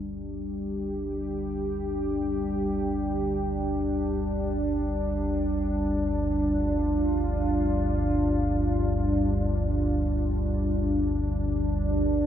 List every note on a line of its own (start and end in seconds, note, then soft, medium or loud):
0.00 12.05 G1 medium
0.00 12.05 D2 medium
0.00 12.26 G3 soft
0.00 12.26 D4 medium
0.00 5.84 G4 medium
5.54 12.06 F4 medium
12.05 12.26 G1 medium
12.05 12.26 D2 medium
12.05 12.26 A#4 medium